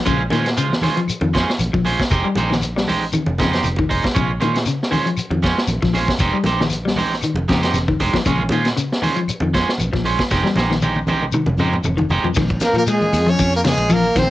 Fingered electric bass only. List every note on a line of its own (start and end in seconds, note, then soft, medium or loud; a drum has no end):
0.07 0.29 A#1 loud
0.32 0.54 A#2 medium
1.08 muted fingered electric bass stroke soft
1.21 1.44 F2 medium
1.59 1.71 A#1 medium
1.74 1.96 A#1 medium
2.11 2.23 F1 medium
2.36 3.15 A#1 medium
3.27 3.37 F1 medium
3.40 3.62 F2 medium
3.63 3.86 F1 medium
3.91 4.02 F1 medium
4.04 muted fingered electric bass stroke soft
4.16 4.38 A#1 loud
4.42 4.64 A#2 medium
5.18 muted fingered electric bass stroke soft
5.31 5.53 F2 medium
5.68 5.80 A#1 medium
5.83 6.05 A#1 medium
6.20 6.32 F1 medium
6.44 7.24 A#1 medium
7.34 7.46 F1 medium
7.49 7.71 F2 medium
7.74 7.97 F1 medium
8.00 8.12 F1 medium
8.13 muted fingered electric bass stroke soft
8.26 8.48 A#1 loud
8.50 8.73 A#2 medium
9.28 muted fingered electric bass stroke soft
9.41 9.64 F2 medium
9.80 9.91 A#1 medium
9.93 10.15 A#1 medium
10.31 10.43 F1 medium
10.56 11.35 A#1 medium
11.46 11.57 F1 medium
11.58 11.80 F2 medium
11.84 12.06 F1 medium
12.09 12.21 F1 medium
12.36 12.58 A#1 loud
12.73 13.14 A#2 medium
13.13 13.35 F2 medium
13.39 13.73 F2 medium
13.78 14.10 A#1 medium
14.15 14.27 A#1 medium